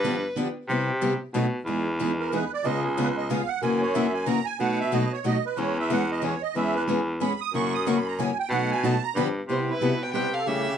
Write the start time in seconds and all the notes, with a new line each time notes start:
Already playing: G2 B4
0.04 D3 F3 B3 D4 G4
0.36 D3 F3 B3 D4 G4
0.68 C3 G3 B3 E4 G4
1.02 C3 G3 B3 E4 G4
1.34 B2 F#3 A3 D#4 F#4 B4
1.65 E2 E3 G#3 B3 D#4 G#4
2.00 E3 G#3 B3 D#4 G#4
2.20 A#4
2.33 E3 G#3 B3 D#4 G#4 B4
2.54 D5
2.64 C#2 C#3 G#3 B3 F4 G#4 D#5
2.85 G#4
2.98 C#3 G#3 B3 F4 G#4 B4
3.17 D#5
3.30 C#3 G#3 B3 F4 G#4 F5
3.48 F#5
3.62 F#2 C#3 E3 F#3 A#3 C#4 E4 F#4 A#4 G#5
3.82 C#5
3.94 C#3 E3 F#3 A#3 C#4 E4 F#4 A#4 E5
4.14 G#5
4.26 C#3 E3 F#3 A#3 C#4 E4 F#4 A#4 A#5
4.46 G#5
4.60 B2 F#3 A3 D#4 F#4 B4 F#5
4.80 E5
4.93 B2 F#3 A3 D#4 F#4 B4 D#5
5.13 C#5
5.26 B2 F#3 A3 D#4 F#4 B4 D#5
5.46 B4
5.57 E2 E3 G#3 B3 C#4 G#4 B4 C#5
5.80 E5
5.90 E3 G#3 B3 C#4 G#4 B4 F#5
6.11 D#5
6.22 E3 G#3 B3 C#4 G#4 B4 C#5
6.42 D#5
6.55 E2 E3 G#3 B3 C#4 G#4 B4 E5
6.76 B4
6.87 E3 G#3 B3 C#4 G#4 B4
7.21 E3 G#3 B3 C#4 G#4 B4 B5
7.41 D#6
7.53 F#2 C#3 E3 F#3 A#3 C#4 E4 F#4 A#4 C#6
7.74 D#6
7.86 C#3 E3 F#3 A#3 C#4 E4 F#4 A#4 C#6
7.97 B5
8.07 A#5
8.19 C#3 E3 F#3 A#3 C#4 E4 F#4 A#4 G#5
8.39 G5
8.50 B2 F#3 A3 D#4 F#4 B4 F#5
8.71 G#5
8.83 B2 F#3 A3 D#4 F#4 B4 A5
9.03 A#5
9.15 G2 D3 F3 B3 D4 G4 B5
9.48 C3 G3 B3 E4 G4 C5
9.69 E4 B4
9.81 B2 C3 G3 B3 E4 G4
10.02 B4 G5
10.13 C3 G3 B3 E4 G4 B4 G5
10.34 A4 F5
10.46 C#3 E3 G3 A3 C#4 E4 G4 A4 C#5 E5